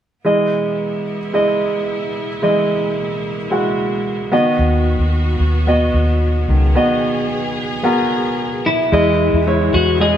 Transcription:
0.25 string section B2 G#3 B3 E4, grand piano E3 G#3 E4 D#5
1.33 grand piano G#3 E4 D#5
2.42 grand piano E3 G#3 E4 D#5, string section A#3
3.50 grand piano G#3 E4 F#4
4.32 grand piano D#3 B3 F#4 D#5, string section F#3 B3 F#4
4.59 fingered electric bass D#2
4.99 fingered electric bass D#2
5.40 fingered electric bass D#2
5.67 grand piano B3 F#4 D#5
5.94 fingered electric bass D#2
6.48 fingered electric bass C#2, grand piano D#3, string section G#4
6.75 grand piano B3 F#4 D#5
7.83 grand piano B3 F#4 A#4
8.66 clean electric guitar E4
8.92 fingered electric bass E2, string section B2 E3 G#3 B3, grand piano E3 G#3 E4 D#5
9.33 fingered electric bass E2
9.46 grand piano G#3 E4 C#5
9.74 fingered electric bass E2, clean electric guitar F#4
10.00 grand piano G#3 E4 D#5, clean electric guitar G#4

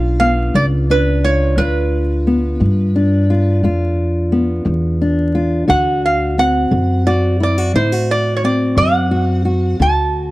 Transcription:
Already playing: upright bass B1, steel-string acoustic guitar G2 B3 D4 F4, resonator guitar played with a steel bar F5
0.20 steel-string acoustic guitar B3, resonator guitar played with a steel bar F5
0.54 upright bass C#2, steel-string acoustic guitar G2, resonator guitar played with a steel bar D5
0.90 steel-string acoustic guitar D4, resonator guitar played with a steel bar B4
1.24 steel-string acoustic guitar F4, resonator guitar played with a steel bar C#5
1.57 upright bass D2, steel-string acoustic guitar G2 F4, resonator guitar played with a steel bar B4
2.27 steel-string acoustic guitar B3
2.60 steel-string acoustic guitar G2, upright bass G2
2.96 steel-string acoustic guitar D4
3.30 steel-string acoustic guitar F4
3.63 upright bass F2, steel-string acoustic guitar G2 F4
4.32 steel-string acoustic guitar B3
4.65 upright bass E2, steel-string acoustic guitar G2
5.01 steel-string acoustic guitar D4
5.35 steel-string acoustic guitar F4
5.68 upright bass D2, steel-string acoustic guitar D3 F#4, resonator guitar played with a steel bar F#5
6.06 resonator guitar played with a steel bar F5
6.38 steel-string acoustic guitar C4, resonator guitar played with a steel bar F#5
6.71 upright bass F#2, steel-string acoustic guitar D3
7.07 steel-string acoustic guitar F#4, resonator guitar played with a steel bar D5
7.40 steel-string acoustic guitar E4, resonator guitar played with a steel bar D5
7.58 steel-string acoustic guitar F#4
7.74 upright bass A2, steel-string acoustic guitar D3 E4, resonator guitar played with a steel bar C5
7.92 steel-string acoustic guitar F#4
8.11 resonator guitar played with a steel bar D5
8.36 resonator guitar played with a steel bar C#5
8.44 steel-string acoustic guitar C4, resonator guitar played with a steel bar D5
8.77 upright bass F#2, steel-string acoustic guitar D3, resonator guitar played with a steel bar F#5
9.11 steel-string acoustic guitar F#4
9.45 steel-string acoustic guitar F#4
9.80 upright bass D2, steel-string acoustic guitar D3 F#4, resonator guitar played with a steel bar A5

